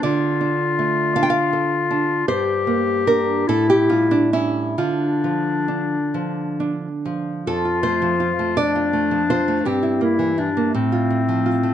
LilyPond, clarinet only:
\new Staff \with { instrumentName = "Clarinet" } { \time 6/8 \key d \minor \tempo 4. = 54 f'2. | g'4. e'4 r8 | d'2~ d'16 r8. | \key f \major f'4. d'4. |
c'8 e'8 d'8 c'4. | }